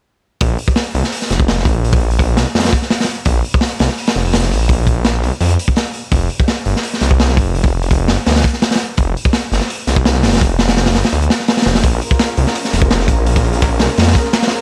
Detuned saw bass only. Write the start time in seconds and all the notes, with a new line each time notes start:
0.41 A#1
0.95 C2
1.30 F1
1.65 A#1
2.37 C2
2.55 F2
3.26 A#1
3.80 C2
4.16 F1
4.51 A#1
5.23 C2
5.41 F2
6.12 F1
6.66 G1
7.01 C2
7.37 F1
8.09 G1
8.27 D2
8.98 F1
9.52 G1
9.87 C2
10.23 F1
10.95 G1
11.12 D2
11.66 F1
11.84 A#1
12.38 C2
12.73 F1
13.08 A#1
13.80 C2
13.98 F2